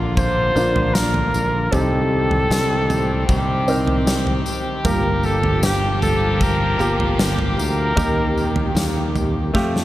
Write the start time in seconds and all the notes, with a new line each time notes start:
Already playing: A#1 A#2 D3 A#3 D4 F4
0.17 C5, kick, floor tom, tambourine
0.55 A#1 A#3 D4 F4, tambourine
0.76 floor tom
0.94 A#4, snare, tambourine
1.14 floor tom
1.34 A#1, tambourine
1.71 C2 C3 D#3 C4 D#4 G4 A4, kick, floor tom, tambourine
2.31 floor tom
2.50 C2, snare, tambourine
2.90 floor tom, tambourine
3.27 C2 G4, kick, floor tom, tambourine
3.68 C4 D#4 A#4, tambourine
3.88 floor tom
4.07 snare, tambourine
4.27 floor tom
4.46 tambourine
4.85 G1 G2 F3 A#3 F4 G4 A#4, kick, floor tom, tambourine
5.23 A4, tambourine
5.43 floor tom
5.63 G4, snare, tambourine
6.02 A4, floor tom, tambourine
6.41 A#4, kick, floor tom, tambourine
6.78 G1 A#3 F4 G4, tambourine
7.00 floor tom
7.19 snare, tambourine
7.39 floor tom
7.57 D2 A#4, tambourine
7.96 D#2 D#3 A#3 D#4 G4, kick, floor tom, tambourine
8.38 tambourine
8.56 floor tom
8.75 D#2, snare, tambourine
9.16 floor tom, tambourine
9.54 F2 F3 A3 F4 G4, kick, snare
9.76 snare